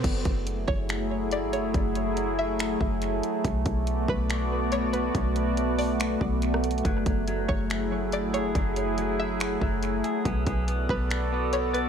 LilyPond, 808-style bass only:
\new Staff \with { instrumentName = "808-style bass" } { \clef bass \time 4/4 \key fis \minor \tempo 4 = 141 fis,,8 fis,,4 fis,,4.~ fis,,16 gis,,16. fis,,16. | fis,,2~ fis,,8 fis,,4 r8 | b,,8 b,,4 b,,2~ b,,8 | b,,2~ b,,8 b,,4. |
fis,,8 fis,,4 fis,,4.~ fis,,16 gis,,16. fis,,16. | fis,,2~ fis,,8 fis,,4 r8 | b,,8 b,,4 b,,2~ b,,8 | }